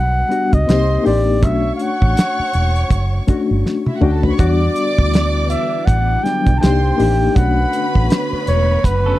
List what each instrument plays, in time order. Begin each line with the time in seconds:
Already playing: fingered electric bass B1, reed electric piano G3 B3 D4 F#4, violin section B4 B5, flugelhorn F#5
0.29 reed electric piano G3 B3 D4 F#4, closed hi-hat
0.53 fingered electric bass C#2, flugelhorn D#5, kick, closed hi-hat
0.67 fingered electric bass C2, reed electric piano A#3 C4 D#4 G4, violin section C5 C6, snare, closed hi-hat
1.03 fingered electric bass A1, reed electric piano A#3 D4 D#4 G4, flugelhorn D5, open hi-hat
1.41 fingered electric bass B1, reed electric piano A3 C#4 D4 F#4, violin section C#5 C#6, flugelhorn E5, kick, closed hi-hat
1.75 flugelhorn F5
1.79 flugelhorn F#5, closed hi-hat
2.02 fingered electric bass A1, kick
2.17 snare, closed hi-hat
2.39 muted fingered electric bass stroke
2.53 fingered electric bass E1, closed hi-hat
2.76 closed hi-hat
2.90 fingered electric bass F#1, kick, closed hi-hat
3.27 reed electric piano A3 C#4 D4 F#4, kick, closed hi-hat
3.51 fingered electric bass G1
3.66 snare
3.86 violin section E4 E5, high tom
3.96 violin section F#4 F#5
4.01 fingered electric bass D2, reed electric piano A3 C#4 D4 F#4, violin section G4 G5, mid tom
4.13 violin section A4 A5
4.23 violin section B4 B5, floor tom
4.31 violin section C#5 C#6
4.37 fingered electric bass E2, string machine D3 E3 B3 E4 D5, reed electric piano G3 B3 D4 F#4, flugelhorn D5, violin section D5 D6, kick, closed hi-hat
4.76 closed hi-hat
4.99 fingered electric bass D2, kick
5.14 snare, closed hi-hat
5.50 flugelhorn E5, closed hi-hat
5.86 fingered electric bass A1, flugelhorn F#5, kick, closed hi-hat
6.23 reed electric piano F#3 G3 B3 D4, flugelhorn G5, snare, closed hi-hat
6.46 fingered electric bass B1, kick, closed hi-hat
6.57 reed electric piano A#3, flugelhorn G5 A5
6.61 fingered electric bass C2, string machine D#3 A#3 C4 G4, reed electric piano D4 D#4 G4, violin section C5 C6, snare, closed hi-hat
6.97 fingered electric bass A1, reed electric piano A#3 D4 D#4 G4, open hi-hat
7.34 fingered electric bass B1, string machine D3 A3 B3 F#4 C#5, reed electric piano A3 C#4 D4 F#4, violin section B4 B5, flugelhorn F#5, kick, closed hi-hat
7.73 closed hi-hat
7.95 fingered electric bass A1, kick
8.10 snare, closed hi-hat
8.33 muted fingered electric bass stroke
8.47 fingered electric bass E1, flugelhorn C#5, closed hi-hat
8.84 fingered electric bass F#1, flugelhorn B4, kick, closed hi-hat
9.06 clean electric guitar C#4 A4